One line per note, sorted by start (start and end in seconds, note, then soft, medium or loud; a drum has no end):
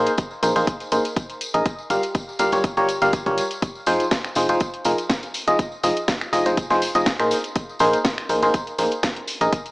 0.00 0.11 A#3 medium
0.00 0.11 D#4 medium
0.00 0.11 G#4 medium
0.00 0.11 A#4 medium
0.00 0.11 C5 loud
0.06 closed hi-hat soft
0.06 tambourine soft
0.18 kick loud
0.18 closed hi-hat medium
0.18 tambourine medium
0.31 tambourine soft
0.43 0.53 A#1 medium
0.43 0.54 A#3 medium
0.43 0.54 D#4 medium
0.43 0.54 G#4 medium
0.43 0.54 A#4 medium
0.43 0.54 C5 medium
0.43 closed hi-hat medium
0.43 tambourine medium
0.56 0.64 A#1 medium
0.56 0.66 A#3 medium
0.56 0.66 D#4 medium
0.56 0.66 G#4 medium
0.56 0.66 A#4 medium
0.56 0.66 C5 loud
0.56 closed hi-hat soft
0.56 tambourine soft
0.67 kick loud
0.67 closed hi-hat medium
0.67 tambourine medium
0.80 closed hi-hat soft
0.80 tambourine soft
0.92 1.01 A#1 loud
0.92 1.03 A#3 medium
0.92 1.03 D#4 medium
0.92 1.03 G#4 medium
0.92 1.03 A#4 medium
0.92 1.03 C5 medium
0.92 closed hi-hat medium
0.92 tambourine medium
1.05 closed hi-hat soft
1.05 tambourine soft
1.16 kick loud
1.16 closed hi-hat medium
1.16 tambourine medium
1.30 closed hi-hat soft
1.30 tambourine soft
1.41 closed hi-hat medium
1.41 tambourine medium
1.54 1.62 A#1 loud
1.54 1.64 D#4 medium
1.54 1.64 G#4 medium
1.54 1.64 A#4 medium
1.54 1.64 D#5 medium
1.54 closed hi-hat soft
1.54 tambourine soft
1.66 kick loud
1.66 closed hi-hat medium
1.66 tambourine soft
1.79 tambourine soft
1.90 1.99 G1 medium
1.90 2.02 G3 medium
1.90 2.02 F4 medium
1.90 2.02 G4 medium
1.90 2.02 A#4 medium
1.90 2.02 F5 medium
1.90 closed hi-hat medium
1.90 tambourine medium
2.03 closed hi-hat soft
2.03 tambourine soft
2.15 kick loud
2.15 closed hi-hat medium
2.15 tambourine soft
2.29 tambourine soft
2.39 2.50 G1 loud
2.39 2.51 G3 medium
2.39 2.51 F4 medium
2.39 2.51 G4 medium
2.39 2.51 A#4 medium
2.39 2.51 F5 medium
2.39 closed hi-hat medium
2.39 tambourine medium
2.52 2.75 G1 loud
2.52 2.63 G3 medium
2.52 2.63 F4 medium
2.52 2.63 G4 medium
2.52 2.63 A#4 medium
2.52 2.63 C#5 medium
2.52 closed hi-hat soft
2.52 tambourine soft
2.64 kick loud
2.64 closed hi-hat medium
2.64 tambourine medium
2.77 2.99 G1 medium
2.77 2.87 G3 medium
2.77 2.87 F4 medium
2.77 2.87 G4 medium
2.77 2.87 A#4 medium
2.77 2.87 C#5 loud
2.77 closed hi-hat soft
2.77 tambourine soft
2.89 closed hi-hat medium
2.89 tambourine medium
3.02 3.24 G1 medium
3.02 3.12 G3 medium
3.02 3.12 F4 medium
3.02 3.12 G4 medium
3.02 3.12 A#4 medium
3.02 3.12 F5 medium
3.02 closed hi-hat soft
3.02 tambourine soft
3.13 kick loud
3.13 closed hi-hat medium
3.13 tambourine medium
3.26 3.40 G1 loud
3.26 3.43 G3 medium
3.26 3.43 F4 medium
3.26 3.43 G4 medium
3.26 3.43 A#4 medium
3.26 3.43 C#5 medium
3.26 kick medium
3.26 closed hi-hat soft
3.26 tambourine soft
3.38 closed hi-hat medium
3.38 tambourine medium
3.51 closed hi-hat soft
3.51 tambourine soft
3.62 kick loud
3.62 closed hi-hat medium
3.62 tambourine soft
3.75 tambourine soft
3.86 4.02 F1 loud
3.86 4.05 F3 medium
3.86 4.05 D#4 medium
3.86 4.05 F4 medium
3.86 4.05 G#4 medium
3.86 4.05 C5 loud
3.86 open hi-hat loud
3.86 tambourine medium
4.00 closed hi-hat soft
4.00 tambourine soft
4.11 kick loud
4.11 snare loud
4.11 closed hi-hat medium
4.11 tambourine medium
4.24 finger snap medium
4.24 tambourine soft
4.35 4.47 F1 medium
4.35 4.47 F3 medium
4.35 4.47 D#4 medium
4.35 4.47 F4 medium
4.35 4.47 G#4 medium
4.35 4.47 C5 medium
4.35 open hi-hat medium
4.35 tambourine medium
4.49 4.57 F1 loud
4.49 4.59 F3 medium
4.49 4.59 D#4 medium
4.49 4.59 F4 medium
4.49 4.59 G#4 medium
4.49 4.59 C5 medium
4.49 closed hi-hat soft
4.49 tambourine soft
4.60 kick loud
4.60 closed hi-hat medium
4.60 tambourine soft
4.73 closed hi-hat soft
4.73 tambourine soft
4.84 4.94 F1 medium
4.84 4.97 F3 medium
4.84 4.97 D#4 medium
4.84 4.97 F4 medium
4.84 4.97 G#4 medium
4.84 4.97 A#4 medium
4.84 open hi-hat loud
4.84 tambourine medium
4.98 closed hi-hat soft
4.98 tambourine soft
5.10 kick loud
5.10 snare loud
5.10 closed hi-hat medium
5.10 tambourine medium
5.23 closed hi-hat soft
5.23 tambourine soft
5.34 open hi-hat medium
5.34 tambourine medium
5.48 5.55 F1 medium
5.48 5.58 F3 medium
5.48 5.58 D#4 medium
5.48 5.58 F4 medium
5.48 5.58 G#4 medium
5.48 5.58 D#5 medium
5.48 closed hi-hat soft
5.48 tambourine soft
5.59 kick loud
5.59 closed hi-hat medium
5.59 tambourine soft
5.72 tambourine soft
5.83 5.93 F1 medium
5.83 5.95 F3 medium
5.83 5.95 D#4 medium
5.83 5.95 F4 medium
5.83 5.95 G#4 medium
5.83 5.95 D#5 medium
5.83 open hi-hat loud
5.83 tambourine medium
5.97 closed hi-hat medium
5.97 tambourine soft
6.08 kick loud
6.08 snare loud
6.08 closed hi-hat medium
6.08 tambourine soft
6.21 finger snap medium
6.21 tambourine soft
6.33 6.43 F1 loud
6.33 6.44 F3 medium
6.33 6.44 D#4 medium
6.33 6.44 F4 medium
6.33 6.44 G#4 medium
6.33 6.44 D#5 loud
6.33 open hi-hat medium
6.33 tambourine medium
6.46 6.68 F1 loud
6.46 6.56 F3 medium
6.46 6.56 D#4 medium
6.46 6.56 F4 medium
6.46 6.56 G#4 medium
6.46 6.56 C5 medium
6.46 closed hi-hat soft
6.46 tambourine soft
6.57 kick loud
6.57 closed hi-hat medium
6.57 tambourine medium
6.70 6.92 F1 medium
6.70 6.81 F3 medium
6.70 6.81 D#4 medium
6.70 6.81 F4 medium
6.70 6.81 G#4 medium
6.70 6.81 C5 loud
6.70 snare soft
6.70 closed hi-hat soft
6.70 tambourine soft
6.82 open hi-hat loud
6.82 tambourine medium
6.95 7.17 F1 medium
6.95 7.05 F3 medium
6.95 7.05 D#4 medium
6.95 7.05 F4 medium
6.95 7.05 G#4 medium
6.95 7.05 D#5 loud
6.95 closed hi-hat soft
6.95 tambourine soft
7.06 kick loud
7.06 snare loud
7.06 closed hi-hat medium
7.06 tambourine medium
7.20 7.34 A#1 medium
7.20 7.37 A#3 medium
7.20 7.36 D#4 medium
7.20 7.37 G#4 medium
7.20 7.37 A#4 medium
7.20 7.37 C5 medium
7.20 finger snap medium
7.20 closed hi-hat soft
7.20 tambourine soft
7.31 open hi-hat medium
7.31 tambourine medium
7.44 closed hi-hat soft
7.44 tambourine soft
7.56 kick loud
7.56 closed hi-hat medium
7.56 tambourine soft
7.69 tambourine soft
7.79 7.96 A#1 loud
7.79 7.98 A#3 medium
7.79 7.98 D#4 medium
7.79 7.98 G#4 medium
7.79 7.98 A#4 medium
7.79 7.98 C5 loud
7.79 open hi-hat loud
7.79 tambourine medium
7.93 closed hi-hat medium
7.93 tambourine soft
8.05 kick loud
8.05 snare loud
8.05 closed hi-hat medium
8.05 tambourine soft
8.18 finger snap medium
8.18 tambourine soft
8.29 8.40 A#1 loud
8.29 8.41 A#3 medium
8.29 8.41 D#4 medium
8.29 8.41 G#4 medium
8.29 8.41 A#4 medium
8.29 8.41 C5 medium
8.29 open hi-hat medium
8.29 tambourine medium
8.42 8.50 A#1 loud
8.42 8.53 A#3 medium
8.42 8.53 D#4 medium
8.42 8.53 G#4 medium
8.42 8.53 A#4 medium
8.42 8.53 C5 loud
8.42 closed hi-hat soft
8.42 tambourine soft
8.54 kick loud
8.54 closed hi-hat medium
8.54 tambourine soft
8.67 closed hi-hat soft
8.67 tambourine soft
8.78 8.88 A#1 medium
8.78 8.90 A#3 medium
8.78 8.90 D#4 medium
8.78 8.90 G#4 medium
8.78 8.90 A#4 medium
8.78 8.90 C5 medium
8.78 open hi-hat loud
8.78 tambourine medium
8.91 closed hi-hat medium
8.91 tambourine soft
9.03 kick loud
9.03 snare loud
9.03 closed hi-hat medium
9.03 tambourine soft
9.16 closed hi-hat soft
9.16 tambourine soft
9.27 open hi-hat medium
9.27 tambourine medium
9.41 9.49 A#1 medium
9.41 9.51 D#4 medium
9.41 9.51 G#4 medium
9.41 9.51 A#4 medium
9.41 9.51 D#5 medium
9.41 closed hi-hat medium
9.41 tambourine soft
9.53 kick loud
9.53 closed hi-hat medium
9.53 tambourine soft
9.66 closed hi-hat soft
9.66 tambourine soft